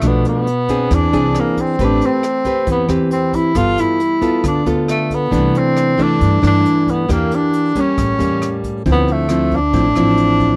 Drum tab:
HH |xxxxxxxx|xxxxxxxx|xxxxxxxx|xxxxxxxx|
SD |r---r-r-|--r--r--|r---r-r-|--r--r--|
BD |o--oo--o|o--oo--o|o--oo--o|o--oo--o|

HH |xxxxxxxx|xxxxxxxx|
SD |r---r-r-|--r--r--|
BD |o--oo--o|o--oo--o|